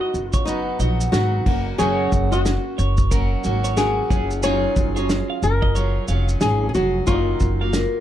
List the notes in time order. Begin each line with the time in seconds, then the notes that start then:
Already playing: F#3 B3 D#4 F#4
0.01 D#5
0.14 F#1, shaker
0.28 F4
0.33 C#5, kick, shaker
0.45 F#3 B3 D#4 F#4 B4, shaker
0.79 A#1 F#3 B3 D#4 F#4 D#5, shaker
1.01 shaker
1.12 G#1 F#3 B3 D#4 F#4, snare, shaker
1.46 F#1 F#3 A#3 C#4 F#4, kick, crash
1.78 F#1 F#2 C#3 F#3 A#3 C#4 F#4 G#4 C#5, shaker
2.12 F#1, kick, shaker
2.32 F#3 A#3 C#4 F#4 D#5, shaker
2.46 snare, shaker
2.78 F#1 C#5, shaker
2.97 kick, shaker
3.11 F#3 A#3 C#4 F#4 A#4, kick, shaker
3.44 G#1 F#3 A#3 C#4 F#4, shaker
3.64 C#5, shaker
3.77 F#3 A#3 C#4 F#4 G#4 A#4, snare, shaker
4.10 F#1 F#3 C#4 F4 G#4, kick, shaker
4.31 shaker
4.43 F#2 D#3 F#3 C#4 F4 G#4 C#5, shaker
4.76 F#1, kick, shaker
4.96 F#3 C#4 F4 G#4 C#5, shaker
5.09 snare, shaker
5.30 F5
5.43 F#1 A#4, shaker
5.62 D#5, kick
5.75 F#3 C#4 F4 G#4 C#5, shaker
6.08 F1 F#3 C#4 F4 G#4 F5, shaker
6.29 shaker
6.41 G#1 F#3 C#4 F4 G#4, snare, shaker
6.69 G#4
6.75 F1 F#3 C#4 F#4 G#4, shaker
7.07 F#1 F#2 D#3 F#3 A#3 F4 D#5, kick, shaker
7.40 F#1, kick, shaker
7.61 F#3 A#3 F4 F5
7.73 A#4, snare, shaker